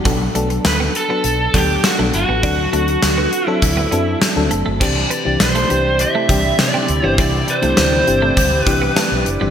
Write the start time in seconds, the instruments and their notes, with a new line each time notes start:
0.05 fretless electric bass B1, fm electric piano F#3 B3 D4 A4, clean electric guitar F#3, kick, closed hi-hat
0.35 fretless electric bass B1, fm electric piano F#3 B3 D4 A4, clean electric guitar A3, closed hi-hat
0.50 muted clean electric guitar stroke, closed hi-hat
0.65 fretless electric bass D2, lead electric guitar B4, snare, closed hi-hat
0.80 clean electric guitar B3
0.95 lead electric guitar A4, muted clean electric guitar stroke, closed hi-hat
1.09 fm electric piano F#3 B3 D4 A4, clean electric guitar B3
1.24 fretless electric bass B1, closed hi-hat
1.53 fretless electric bass D2, fm electric piano F#3 B3 D4 A4, clean electric guitar F#3, lead electric guitar G4, kick, closed hi-hat
1.84 lead electric guitar F#4, snare, closed hi-hat
1.98 fretless electric bass B1, fm electric piano F#3 B3 D4 A4, clean electric guitar A3
2.13 fretless electric bass G1, lead electric guitar F#4, muted clean electric guitar stroke, closed hi-hat
2.28 fretless electric bass A1, clean electric guitar B3
2.43 fretless electric bass D2, fm electric piano F#3 C4 D4 A4, clean electric guitar D4, kick, closed hi-hat
2.58 muted clean electric guitar stroke
2.72 fretless electric bass D2, fm electric piano F#3 C4 D4 A4, clean electric guitar A3, closed hi-hat
2.88 closed hi-hat
3.02 fretless electric bass D2, snare, closed hi-hat
3.18 clean electric guitar B3
3.33 muted clean electric guitar stroke, closed hi-hat
3.47 fm electric piano F#3 C4 D4 A4, clean electric guitar C4, lead electric guitar E4
3.62 fretless electric bass D2, muted clean electric guitar stroke, kick, closed hi-hat
3.77 clean electric guitar B3
3.91 fretless electric bass F#2, fm electric piano F#3 C4 D4 A4, clean electric guitar B3, closed hi-hat
4.21 muted clean electric guitar stroke, snare, closed hi-hat
4.36 fretless electric bass D2, fm electric piano F#3 C4 D4 A4
4.51 fretless electric bass F#1, clean electric guitar A3, closed hi-hat
4.66 fretless electric bass G1, clean electric guitar A3
4.80 fretless electric bass C2, analog synth pad C3 C4 E4 D5, fm electric piano E3 C4 D4 G4, clean electric guitar C4, lead electric guitar D5, kick, crash
4.96 muted clean electric guitar stroke
5.11 clean electric guitar B3, closed hi-hat
5.25 fretless electric bass C2, fm electric piano E3 C4 D4 G4
5.40 fretless electric bass B1, lead electric guitar C5, muted clean electric guitar stroke, snare, closed hi-hat
5.55 clean electric guitar A3, closed hi-hat
5.69 fretless electric bass C2, fm electric piano E3 C4 D4 G4, clean electric guitar B3, closed hi-hat
5.99 lead electric guitar E5, muted clean electric guitar stroke, closed hi-hat
6.15 clean electric guitar A3
6.29 fretless electric bass C2, fm electric piano E3 C4 D4 G4, clean electric guitar G3, kick, closed hi-hat
6.59 fretless electric bass C3, lead electric guitar D5, snare, closed hi-hat
6.74 clean electric guitar C4
6.88 fretless electric bass D2, muted clean electric guitar stroke, closed hi-hat
7.03 fretless electric bass G1, fm electric piano E3 C4 D4 G4, clean electric guitar B3
7.08 lead electric guitar C5
7.17 fretless electric bass C2, fm electric piano E3 C4 D4 G4, clean electric guitar C4, lead electric guitar D5, kick, closed hi-hat
7.48 lead electric guitar C5, muted clean electric guitar stroke, closed hi-hat
7.62 fretless electric bass C2, fm electric piano E3 C4 D4 G4, clean electric guitar A3, closed hi-hat
7.77 fretless electric bass D2, clean electric guitar B3, snare, closed hi-hat
7.92 muted clean electric guitar stroke
8.07 fretless electric bass G1, fm electric piano E3 C4 D4 G4, closed hi-hat
8.22 clean electric guitar A3
8.37 fretless electric bass D2, clean electric guitar G3, kick, closed hi-hat
8.61 lead electric guitar B4
8.66 fretless electric bass C2, fm electric piano E3 C4 D4 G4, muted clean electric guitar stroke, kick, closed hi-hat
8.82 clean electric guitar B3
8.97 clean electric guitar A3, snare, closed hi-hat
9.11 fretless electric bass B1
9.26 fretless electric bass F#1, muted clean electric guitar stroke, closed hi-hat
9.41 fretless electric bass G1, fm electric piano E3 C4 D4 G4, clean electric guitar G3